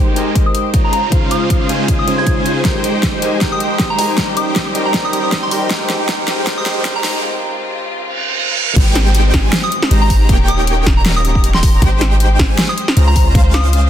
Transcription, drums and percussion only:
0.16 closed hi-hat medium
0.35 kick loud
0.35 closed hi-hat medium
0.55 closed hi-hat medium
0.74 kick loud
0.74 closed hi-hat medium
0.93 closed hi-hat medium
1.12 kick loud
1.12 closed hi-hat medium
1.31 closed hi-hat medium
1.50 kick medium
1.50 closed hi-hat medium
1.69 closed hi-hat medium
1.88 kick medium
1.88 closed hi-hat medium
2.08 closed hi-hat medium
2.27 kick loud
2.27 closed hi-hat medium
2.46 closed hi-hat medium
2.65 kick loud
2.65 snare soft
2.65 closed hi-hat medium
2.84 closed hi-hat medium
3.03 kick medium
3.03 snare medium
3.03 closed hi-hat medium
3.22 closed hi-hat medium
3.41 kick loud
3.41 snare medium
3.41 closed hi-hat medium
3.60 closed hi-hat medium
3.79 kick loud
3.79 snare medium
3.79 closed hi-hat medium
3.99 open hi-hat medium
4.18 kick loud
4.18 snare medium
4.18 closed hi-hat medium
4.37 closed hi-hat medium
4.56 kick medium
4.56 snare medium
4.56 closed hi-hat medium
4.75 closed hi-hat medium
4.94 kick loud
4.94 snare medium
4.94 closed hi-hat medium
5.13 closed hi-hat medium
5.32 kick loud
5.32 snare medium
5.32 closed hi-hat medium
5.51 open hi-hat medium
5.71 kick loud
5.71 snare medium
5.71 closed hi-hat medium
5.90 snare medium
5.90 closed hi-hat medium
6.09 kick medium
6.09 snare medium
6.09 closed hi-hat medium
6.28 snare medium
6.28 closed hi-hat medium
6.47 kick loud
6.47 snare medium
6.47 closed hi-hat medium
6.66 snare medium
6.66 closed hi-hat medium
6.85 kick loud
6.85 snare medium
6.85 closed hi-hat medium
7.04 snare medium
7.04 open hi-hat medium
8.76 kick loud
8.76 closed hi-hat medium
8.76 crash loud
8.95 snare medium
8.95 closed hi-hat medium
9.15 closed hi-hat medium
9.34 kick loud
9.34 snare medium
9.34 closed hi-hat medium
9.53 snare loud
9.53 closed hi-hat medium
9.72 closed hi-hat medium
9.83 snare medium
9.91 closed hi-hat medium
10.10 kick medium
10.10 open hi-hat medium
10.29 kick loud
10.29 closed hi-hat medium
10.48 closed hi-hat medium
10.67 closed hi-hat medium
10.86 kick loud
10.86 snare medium
10.86 closed hi-hat medium
11.06 snare loud
11.06 closed hi-hat medium
11.25 closed hi-hat medium
11.35 kick medium
11.44 closed hi-hat medium
11.54 snare soft
11.63 kick loud
11.63 open hi-hat medium
11.82 kick loud
11.82 closed hi-hat medium
12.01 snare medium
12.01 closed hi-hat medium
12.20 closed hi-hat medium
12.39 kick loud
12.39 snare medium
12.39 closed hi-hat medium
12.59 snare loud
12.59 closed hi-hat medium
12.78 closed hi-hat medium
12.88 snare medium
12.97 closed hi-hat medium
13.16 kick medium
13.16 open hi-hat medium
13.35 kick loud
13.35 closed hi-hat medium
13.54 snare medium
13.54 closed hi-hat medium
13.73 closed hi-hat medium

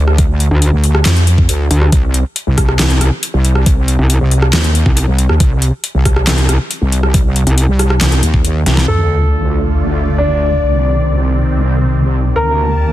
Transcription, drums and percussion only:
0.08 cross-stick medium
0.18 kick loud
0.18 closed hi-hat medium
0.40 closed hi-hat medium
0.62 closed hi-hat medium
0.84 open hi-hat medium
0.95 cross-stick medium
1.05 snare loud
1.05 clap medium
1.05 closed hi-hat medium
1.16 closed hi-hat soft
1.27 closed hi-hat medium
1.38 kick medium
1.49 closed hi-hat medium
1.71 closed hi-hat medium
1.82 cross-stick medium
1.92 kick loud
1.92 closed hi-hat medium
2.14 closed hi-hat medium
2.36 closed hi-hat medium
2.58 kick medium
2.58 cross-stick medium
2.58 open hi-hat loud
2.69 cross-stick medium
2.79 snare loud
2.79 clap medium
2.79 closed hi-hat medium
2.90 closed hi-hat soft
3.01 cross-stick medium
3.01 closed hi-hat medium
3.23 closed hi-hat medium
3.45 closed hi-hat medium
3.55 cross-stick medium
3.66 kick loud
3.66 closed hi-hat medium
3.88 closed hi-hat medium
4.10 closed hi-hat medium
4.31 open hi-hat loud
4.42 cross-stick medium
4.53 snare loud
4.53 clap medium
4.53 closed hi-hat medium
4.64 closed hi-hat soft
4.75 closed hi-hat medium
4.86 kick medium
4.97 closed hi-hat medium
5.19 closed hi-hat medium
5.29 cross-stick medium
5.40 kick loud
5.40 closed hi-hat medium
5.62 closed hi-hat medium
5.84 closed hi-hat medium
6.05 kick medium
6.05 cross-stick medium
6.05 open hi-hat loud
6.16 cross-stick medium
6.27 snare loud
6.27 clap medium
6.27 closed hi-hat medium
6.38 closed hi-hat soft
6.49 cross-stick medium
6.49 closed hi-hat medium
6.71 closed hi-hat medium
6.92 closed hi-hat medium
7.03 cross-stick medium
7.14 kick loud
7.14 closed hi-hat medium
7.36 closed hi-hat medium
7.47 closed hi-hat soft
7.58 closed hi-hat medium
7.79 cross-stick medium
7.79 open hi-hat medium
7.90 cross-stick medium
8.01 snare loud
8.01 clap medium
8.01 closed hi-hat medium
8.12 closed hi-hat soft
8.23 closed hi-hat medium
8.34 kick medium
8.45 closed hi-hat medium
8.66 snare medium
8.66 closed hi-hat medium
8.77 snare medium
8.88 crash medium

